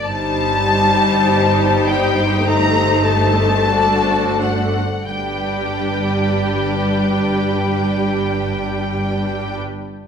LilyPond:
<<
  \new Staff \with { instrumentName = "Violin section" } { \time 4/4 \key c \dorian \tempo 4 = 48 a''4. g''8 bes''8 a''4 fis''8 | g''1 | }
  \new Staff \with { instrumentName = "Violin section" } { \time 4/4 \key c \dorian << { c''1 | b'1 | } \\ { g'2. fis'4 | g'1 | } >> }
  \new Staff \with { instrumentName = "Viola section" } { \time 4/4 \key c \dorian << { ees'2. d'4 | d'1 | } \\ { g2 a2 | g1 | } >> }
  \new Staff \with { instrumentName = "Cello section" } { \clef bass \time 4/4 \key c \dorian g,1 | g,1 | }
  \new Staff \with { instrumentName = "Double bass section" } { \clef bass \time 4/4 \key c \dorian g,,1 | g,,1 | }
>>